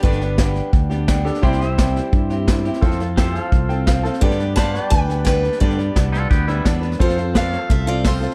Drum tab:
HH |----p-------p---|----p-------p---|----p-------p---|----p-------p---|
SD |ooo-o-o-o-o-o-oo|ooo-o-o-o-o-o-oo|ooo-o-o-o-o-o-oo|ooo-o-o-o-o-o-oo|
BD |o---o---o---o---|o---o---o---o---|o---o---o---o---|o---o---o---o---|

HH |----p-------p---|----p-------p---|
SD |ooo-o-o-o-o-o-oo|ooo-o-o-o-o-o-oo|
BD |o---o---o---o---|o---o---o---o---|